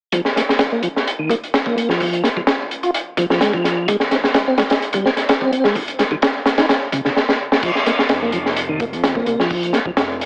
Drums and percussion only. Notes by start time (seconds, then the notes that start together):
0.12 kick, closed hi-hat
0.25 snare
0.36 snare, closed hi-hat
0.49 snare
0.59 snare, closed hi-hat
0.83 closed hi-hat
0.96 snare
1.07 closed hi-hat
1.29 kick, closed hi-hat
1.44 closed hi-hat
1.54 snare, closed hi-hat
1.66 kick
1.78 closed hi-hat
1.90 snare
2.00 kick, open hi-hat
2.13 closed hi-hat
2.24 snare, closed hi-hat
2.37 kick
2.47 snare, closed hi-hat
2.71 closed hi-hat
2.83 closed hi-hat
2.94 closed hi-hat
3.17 kick, closed hi-hat
3.30 snare
3.41 snare, closed hi-hat
3.53 kick
3.64 snare, closed hi-hat
3.88 kick, closed hi-hat
4.00 snare
4.11 snare, closed hi-hat
4.24 snare
4.34 snare, closed hi-hat
4.58 snare, closed hi-hat
4.70 snare, closed hi-hat
4.80 snare, closed hi-hat
4.93 kick, closed hi-hat
5.06 snare
5.17 snare, closed hi-hat
5.29 snare, closed hi-hat
5.41 kick
5.53 closed hi-hat
5.64 snare
5.75 kick, open hi-hat
5.88 closed hi-hat
5.99 snare, closed hi-hat
6.11 kick
6.22 snare, closed hi-hat
6.46 snare, closed hi-hat
6.58 snare, closed hi-hat
6.69 snare, closed hi-hat
6.92 kick, closed hi-hat
7.05 snare
7.16 snare
7.29 snare
7.52 snare
7.63 kick, closed hi-hat, crash
7.75 snare
7.86 snare, closed hi-hat
7.99 snare
8.09 snare, closed hi-hat
8.32 closed hi-hat
8.46 snare
8.57 closed hi-hat
8.80 kick, closed hi-hat
8.93 closed hi-hat
9.04 snare, closed hi-hat
9.15 kick
9.26 closed hi-hat
9.40 snare
9.50 kick, open hi-hat
9.63 closed hi-hat
9.73 snare, closed hi-hat
9.85 kick
9.97 snare, closed hi-hat
10.21 closed hi-hat